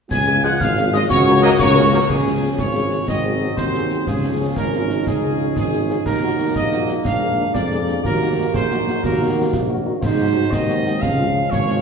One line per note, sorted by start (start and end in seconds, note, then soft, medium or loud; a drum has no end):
0.10 0.52 C#2 medium
0.10 1.06 F4 medium
0.10 0.41 G#5 loud
0.10 0.45 G#6 loud
0.10 concert bass drum medium
0.10 snare medium
0.10 crash medium
0.28 0.34 C#4 medium
0.28 0.34 F4 medium
0.28 0.34 G#4 medium
0.43 0.49 F3 medium
0.43 0.50 G#3 medium
0.43 0.50 C#4 medium
0.43 0.50 F4 medium
0.43 0.50 G#4 medium
0.43 0.60 F#5 loud
0.43 0.59 F#6 medium
0.60 1.01 G#1 medium
0.60 0.91 F5 loud
0.60 0.91 F6 medium
0.60 concert bass drum medium
0.60 snare medium
0.77 0.83 C#4 medium
0.77 0.83 F4 medium
0.77 0.83 G#4 medium
0.77 snare medium
0.93 0.99 F3 medium
0.93 0.99 G#3 medium
0.93 0.99 C#4 medium
0.93 1.00 F4 medium
0.93 0.99 G#4 medium
0.93 1.01 D#5 loud
0.93 0.99 D#6 loud
0.93 snare medium
1.09 1.51 C#2 loud
1.09 1.61 F#4 loud
1.09 1.40 C#5 loud
1.09 1.40 C#6 loud
1.09 concert bass drum medium
1.09 snare medium
1.27 1.32 C#4 medium
1.27 1.33 F#4 medium
1.27 1.32 A#4 medium
1.41 1.49 F#3 loud
1.41 1.49 A#3 loud
1.41 1.48 C#4 medium
1.41 1.48 F#4 medium
1.41 1.49 A#4 medium
1.41 1.50 D#5 loud
1.41 1.47 D#6 loud
1.58 2.00 C#2 loud
1.58 1.84 A#3 medium
1.58 2.05 F#4 loud
1.58 2.05 C#5 loud
1.58 2.05 C#6 loud
1.58 concert bass drum medium
1.58 snare medium
1.75 1.81 C#4 medium
1.75 1.81 F#4 medium
1.75 1.81 A#4 medium
1.75 snare medium
1.92 1.99 F#3 medium
1.92 1.99 A#3 medium
1.92 1.98 C#4 medium
1.92 1.98 F#4 medium
1.92 1.98 A#4 medium
1.92 snare medium
2.09 2.50 C#2 medium
2.09 3.05 F3 medium
2.09 3.04 C#4 medium
2.09 2.58 G#4 medium
2.09 concert bass drum medium
2.09 snare medium
2.09 crash soft
2.25 2.31 C#4 medium
2.25 2.31 F4 soft
2.25 2.31 G#4 medium
2.42 2.48 C#4 soft
2.42 2.48 F4 medium
2.42 2.48 G#4 soft
2.58 3.00 G#1 medium
2.58 3.05 F4 medium
2.58 3.04 C#5 medium
2.58 concert bass drum medium
2.58 snare medium
2.75 2.81 C#4 medium
2.75 2.81 F4 medium
2.75 2.81 G#4 medium
2.75 snare medium
2.91 2.98 C#4 soft
2.91 2.98 F4 soft
2.91 2.98 G#4 medium
2.91 snare soft
3.07 3.49 G#1 medium
3.07 4.07 F#3 medium
3.07 4.07 C4 medium
3.07 3.54 C4 medium
3.07 3.54 D#5 medium
3.07 concert bass drum medium
3.07 snare medium
3.25 3.31 C4 soft
3.25 3.31 F#4 medium
3.25 3.31 G#4 soft
3.40 3.46 C4 medium
3.40 3.46 F#4 soft
3.40 3.46 G#4 soft
3.57 3.99 D#2 medium
3.57 4.04 D#4 medium
3.57 4.03 C5 medium
3.57 concert bass drum medium
3.57 snare medium
3.73 3.79 C4 medium
3.73 3.79 F#4 medium
3.73 3.79 G#4 medium
3.73 snare soft
3.90 3.96 C4 soft
3.90 3.96 F#4 soft
3.90 3.96 G#4 soft
3.90 snare soft
4.07 4.48 C#2 medium
4.07 6.01 F3 medium
4.07 6.06 C#4 medium
4.07 4.54 F4 medium
4.07 4.53 G#4 medium
4.07 concert bass drum medium
4.07 snare medium
4.23 4.29 C#4 medium
4.23 4.30 F4 medium
4.23 4.30 G#4 medium
4.39 4.45 C#4 medium
4.39 4.46 F4 medium
4.39 4.46 G#4 medium
4.56 4.98 G#1 medium
4.56 7.06 D#4 medium
4.56 5.02 A#4 medium
4.56 concert bass drum medium
4.56 snare medium
4.73 4.79 C#4 soft
4.73 4.79 F4 medium
4.73 4.79 G#4 medium
4.73 snare soft
4.90 4.96 C#4 soft
4.90 4.96 F4 medium
4.90 4.96 G#4 medium
4.90 snare soft
5.06 5.47 C#2 medium
5.06 5.55 G#4 medium
5.06 concert bass drum medium
5.06 snare medium
5.23 5.29 C#4 medium
5.23 5.29 F4 medium
5.23 5.29 G#4 soft
5.39 5.45 C#4 medium
5.39 5.45 F4 medium
5.39 5.45 G#4 soft
5.56 5.93 G#1 medium
5.56 6.02 G#4 medium
5.56 concert bass drum medium
5.56 snare medium
5.73 5.79 C#4 medium
5.73 5.79 F4 medium
5.73 5.79 G#4 medium
5.73 snare soft
5.89 5.95 C#4 medium
5.89 5.95 F4 medium
5.89 5.95 G#4 soft
5.89 snare soft
6.05 6.47 D#2 medium
6.05 7.01 F#3 medium
6.05 8.00 A#3 medium
6.05 6.52 A#4 medium
6.05 concert bass drum medium
6.05 snare medium
6.05 crash soft
6.22 6.28 A#3 medium
6.22 6.28 D#4 medium
6.22 6.28 F#4 soft
6.39 6.45 A#3 medium
6.39 6.45 D#4 medium
6.39 6.45 F#4 medium
6.55 6.97 A#1 medium
6.55 6.91 D#5 medium
6.55 concert bass drum medium
6.55 snare medium
6.72 6.79 A#3 medium
6.72 6.79 D#4 medium
6.72 6.79 F#4 medium
6.72 snare soft
6.89 6.95 A#3 medium
6.89 6.95 D#4 medium
6.89 6.95 F#4 medium
6.89 snare soft
7.04 7.47 A#1 medium
7.04 8.04 G#3 medium
7.04 7.56 D4 medium
7.04 7.51 F5 medium
7.04 concert bass drum medium
7.04 snare medium
7.22 7.28 A#3 medium
7.22 7.28 D4 medium
7.22 7.28 G#4 medium
7.38 7.44 A#3 medium
7.38 7.44 D4 soft
7.38 7.44 G#4 soft
7.54 7.96 F2 medium
7.54 8.05 F4 medium
7.54 8.00 D5 medium
7.54 concert bass drum medium
7.54 snare medium
7.71 7.77 A#3 medium
7.71 7.77 D4 medium
7.71 7.77 G#4 medium
7.71 snare soft
7.88 7.94 A#3 medium
7.88 7.94 D4 medium
7.88 7.94 G#4 medium
7.88 snare soft
8.04 8.46 D#2 medium
8.04 9.86 F#3 medium
8.04 9.86 A#3 medium
8.04 8.52 F#4 medium
8.04 8.50 A#4 medium
8.04 concert bass drum medium
8.04 snare medium
8.22 8.28 A#3 medium
8.22 8.28 D#4 medium
8.22 8.28 F#4 medium
8.38 8.44 A#3 medium
8.38 8.44 D#4 medium
8.38 8.44 F#4 medium
8.53 8.95 A#1 medium
8.53 8.89 G#4 medium
8.53 9.00 C5 medium
8.53 concert bass drum medium
8.53 snare medium
8.70 8.77 A#3 medium
8.70 8.77 D#4 medium
8.70 8.77 F#4 medium
8.70 snare soft
8.87 8.93 A#3 medium
8.87 8.93 D#4 medium
8.87 8.93 F#4 medium
8.87 snare soft
9.03 9.45 D#2 medium
9.03 9.55 F#4 medium
9.03 9.49 A#4 medium
9.03 concert bass drum medium
9.03 snare medium
9.21 9.26 A#3 medium
9.21 9.26 D#4 medium
9.21 9.27 F#4 medium
9.37 9.43 A#3 medium
9.37 9.43 D#4 medium
9.37 9.43 F#4 medium
9.53 9.94 A#1 medium
9.53 10.02 F4 medium
9.53 concert bass drum medium
9.53 snare medium
9.69 9.75 A#3 medium
9.69 9.75 D#4 medium
9.69 9.75 F#4 medium
9.85 9.92 A#3 medium
9.85 9.92 D#4 medium
9.85 9.92 F#4 medium
10.02 10.44 G#2 medium
10.02 10.98 F#3 medium
10.02 11.82 G#3 medium
10.02 10.54 D#4 medium
10.02 10.49 C5 medium
10.02 concert bass drum medium
10.02 snare medium
10.02 crash soft
10.19 10.25 G#3 medium
10.19 10.25 D#4 medium
10.19 10.25 F#4 medium
10.35 10.41 G#3 medium
10.35 10.41 D#4 medium
10.35 10.41 F#4 medium
10.51 10.94 D#2 medium
10.51 11.03 C4 medium
10.51 11.02 D#5 loud
10.51 concert bass drum medium
10.51 snare medium
10.68 10.74 G#3 medium
10.68 10.74 D#4 medium
10.68 10.74 F#4 medium
10.68 snare medium
10.85 10.91 G#3 medium
10.85 10.91 D#4 medium
10.85 10.91 F#4 medium
10.85 snare soft
11.01 11.43 C#2 medium
11.01 11.82 F3 medium
11.01 11.52 C#4 medium
11.01 11.51 F5 loud
11.01 concert bass drum medium
11.01 snare medium
11.19 11.25 G#3 medium
11.19 11.25 C#4 medium
11.19 11.25 F4 medium
11.35 11.41 G#3 medium
11.35 11.41 C#4 medium
11.35 11.41 F4 medium
11.51 11.82 G#1 medium
11.51 11.82 F4 medium
11.51 11.82 C#5 loud
11.51 concert bass drum medium
11.51 snare medium
11.68 11.74 G#3 medium
11.68 11.74 C#4 medium
11.68 11.74 F4 medium
11.68 snare medium